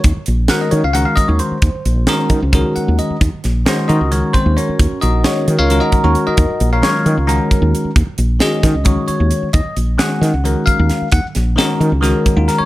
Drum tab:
HH |xxxxxxx|xxxxxxx|xxxxxxx|xxxxxxx|
SD |--o----|--o----|-oo----|--o----|
BD |o----o-|o--oo--|o----o-|o----o-|

HH |xxxxxxx|xxxxxxx|xxxxxxx|xxxxxxx|
SD |--o----|--oo---|--oo--o|-oo-o-o|
BD |o----o-|o--oo--|o----o-|o----o-|